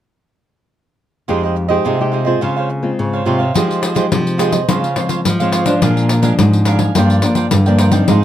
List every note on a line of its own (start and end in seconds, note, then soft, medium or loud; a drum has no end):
1.28 1.77 F2 medium
1.28 1.83 F3 soft
1.28 1.67 G#3 soft
1.28 1.67 D#4 soft
1.28 1.42 F4 medium
1.28 1.67 G4 medium
1.28 1.42 G#4 medium
1.28 1.42 C5 medium
1.28 1.42 D#5 medium
1.43 1.55 G#4 soft
1.43 1.55 C5 soft
1.43 1.56 D#5 soft
1.56 muted cavaquinho stroke soft
1.68 1.94 G#3 medium
1.68 1.94 D#4 soft
1.68 1.95 G4 medium
1.68 1.84 G#4 soft
1.68 1.84 C5 medium
1.68 1.83 D#5 medium
1.85 2.39 C3 soft
1.85 1.98 F4 medium
1.85 1.99 G#4 medium
1.85 1.99 C5 medium
1.85 1.98 D#5 medium
1.99 2.24 G#3 medium
1.99 2.24 D#4 medium
1.99 2.24 G4 medium
1.99 2.12 G#4 soft
1.99 2.12 C5 soft
1.99 2.13 D#5 soft
2.12 2.26 F4 soft
2.12 2.26 G#4 soft
2.12 2.25 C5 soft
2.12 2.24 D#5 medium
2.25 2.79 G#3 medium
2.25 2.79 C4 medium
2.25 2.80 F4 medium
2.25 2.41 G#4 soft
2.25 2.40 C5 medium
2.25 2.40 D#5 medium
2.41 2.96 C#3 soft
2.41 2.55 F4 medium
2.41 2.55 C5 medium
2.41 2.56 C#5 medium
2.41 2.55 F5 medium
2.56 2.69 C5 soft
2.56 2.69 C#5 soft
2.56 2.70 F5 soft
2.69 muted cavaquinho stroke soft
2.82 3.22 G#3 medium
2.82 3.22 C4 medium
2.82 3.22 F4 medium
2.99 3.53 G#2 soft
2.99 3.23 C#3 medium
3.13 3.25 C5 soft
3.13 3.26 C#5 soft
3.13 3.26 F5 soft
3.25 3.51 C3 medium
3.25 3.43 G#3 soft
3.25 3.44 C4 medium
3.25 3.40 F4 medium
3.25 3.44 F4 medium
3.25 3.39 C5 medium
3.25 3.39 C#5 medium
3.25 3.37 F5 medium
3.39 3.54 C5 soft
3.39 3.54 C#5 soft
3.39 3.53 F5 soft
3.54 4.09 F3 medium
3.54 3.94 G#3 soft
3.54 3.94 D#4 soft
3.54 3.81 F4 medium
3.54 3.94 G4 medium
3.54 3.82 G#4 medium
3.54 3.82 C5 medium
3.54 3.83 D#5 medium
3.54 pandeiro medium
3.71 pandeiro soft
3.82 3.94 F4 soft
3.82 3.94 G#4 soft
3.82 3.95 C5 soft
3.82 3.95 D#5 soft
3.82 pandeiro medium
3.95 4.35 G#3 soft
3.95 4.35 D#4 medium
3.95 4.06 F4 medium
3.95 4.35 G4 medium
3.95 4.06 G#4 medium
3.95 4.06 C5 medium
3.95 4.06 D#5 medium
3.95 pandeiro medium
4.12 4.66 C3 medium
4.12 4.60 F3 medium
4.12 pandeiro medium
4.27 pandeiro soft
4.38 4.58 G#3 medium
4.38 4.58 D#4 soft
4.38 4.52 F4 medium
4.38 4.59 G4 medium
4.38 4.53 G#4 medium
4.38 4.52 C5 medium
4.38 4.51 D#5 medium
4.38 pandeiro medium
4.52 4.68 G#4 soft
4.52 4.67 C5 soft
4.52 4.67 D#5 soft
4.52 pandeiro medium
4.68 5.23 C#3 soft
4.68 4.86 F3 medium
4.68 4.86 G#3 soft
4.68 4.86 C4 soft
4.68 4.95 F4 medium
4.68 4.96 C5 medium
4.68 4.96 C#5 medium
4.68 4.97 F5 medium
4.68 pandeiro medium
4.84 pandeiro soft
4.96 5.23 F3 medium
4.96 5.23 G#3 medium
4.96 5.24 C4 medium
4.96 5.08 F4 soft
4.96 5.08 C5 soft
4.96 5.09 C#5 soft
4.96 5.09 F5 soft
4.96 pandeiro medium
5.09 5.19 F4 medium
5.09 5.19 C5 medium
5.09 5.20 C#5 medium
5.09 5.20 F5 medium
5.09 pandeiro soft
5.25 5.79 G#2 medium
5.25 5.74 F3 loud
5.25 pandeiro medium
5.40 5.64 F3 medium
5.40 5.64 G#3 medium
5.40 5.64 C4 medium
5.40 5.52 C5 soft
5.40 5.52 C#5 soft
5.40 5.53 F5 medium
5.40 pandeiro soft
5.52 5.66 F4 medium
5.52 5.67 C5 medium
5.52 5.66 C#5 medium
5.52 5.64 F5 medium
5.52 pandeiro medium
5.66 6.19 F3 medium
5.66 6.19 G#3 medium
5.66 6.19 D4 medium
5.66 5.81 C5 soft
5.66 5.80 C#5 soft
5.66 5.80 F5 soft
5.66 pandeiro medium
5.82 6.36 A#2 medium
5.82 6.08 D4 medium
5.82 6.09 A#4 medium
5.82 6.09 F5 medium
5.82 6.10 G#5 medium
5.82 pandeiro medium
5.97 pandeiro soft
6.09 6.21 D4 soft
6.09 6.22 A#4 soft
6.09 6.22 F5 soft
6.09 6.23 G#5 soft
6.09 pandeiro medium
6.22 6.61 F3 medium
6.22 6.61 G#3 medium
6.22 6.32 D4 medium
6.22 6.62 D4 medium
6.22 6.33 A#4 medium
6.22 6.33 F5 medium
6.22 6.33 G#5 medium
6.22 pandeiro medium
6.39 6.92 F2 medium
6.39 6.87 G#2 medium
6.39 pandeiro medium
6.53 pandeiro soft
6.65 6.92 F3 soft
6.65 6.93 G#3 soft
6.65 6.79 D4 medium
6.65 6.93 D4 medium
6.65 6.80 A#4 medium
6.65 6.79 F5 medium
6.65 6.78 G#5 medium
6.65 pandeiro medium
6.79 6.94 A#4 soft
6.79 6.94 F5 soft
6.79 6.93 G#5 soft
6.79 pandeiro medium
6.95 7.49 G2 medium
6.95 7.19 F3 medium
6.95 7.19 A#3 soft
6.95 7.19 D4 medium
6.95 7.21 F4 medium
6.95 7.22 A#4 medium
6.95 7.23 D5 medium
6.95 7.24 G5 medium
6.95 pandeiro medium
7.10 pandeiro soft
7.22 7.49 F3 medium
7.22 7.50 A#3 medium
7.22 7.50 D4 medium
7.22 7.34 F4 soft
7.22 7.35 A#4 soft
7.22 7.35 D5 soft
7.22 7.36 G5 soft
7.22 pandeiro medium
7.35 7.46 F4 medium
7.35 7.46 A#4 medium
7.35 7.46 D5 medium
7.35 7.46 G5 medium
7.35 pandeiro soft
7.51 8.00 G2 medium
7.51 8.05 D3 medium
7.51 pandeiro medium
7.66 7.90 F3 medium
7.66 7.90 A#3 medium
7.66 7.90 D4 medium
7.66 7.78 A#4 soft
7.66 7.79 D5 soft
7.66 7.79 G5 medium
7.66 pandeiro soft
7.78 7.92 F4 medium
7.78 7.93 A#4 medium
7.78 7.92 D5 medium
7.78 7.90 G5 medium
7.78 pandeiro medium
7.92 8.24 F3 medium
7.92 8.24 C4 medium
7.92 8.24 D#4 medium
7.92 8.07 A#4 soft
7.92 8.07 D5 soft
7.92 8.06 G5 medium
7.92 pandeiro medium
8.08 8.24 G#2 medium
8.08 8.24 D#4 medium
8.08 8.24 G#4 medium
8.08 8.24 C5 medium
8.08 8.24 F5 medium
8.08 pandeiro medium